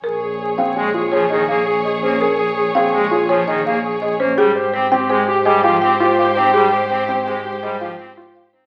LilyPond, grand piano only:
\new Staff \with { instrumentName = "Grand piano" } { \time 6/4 \key bes \dorian \tempo 4 = 166 r4. c'8 aes'8 f'8 aes'8 ees'8 r4. des'8 | r4. c'8 aes'8 f'8 aes'8 ees'8 r4. des'8 | g'8 c''8 r8 c'8 aes'8 g'8 aes'8 f'8 r8 f'8 r8 ees'8 | g'8 c''8 r8 c'8 aes'8 g'8 aes'8 f'8 r8 f'8 r8 ees'8 | }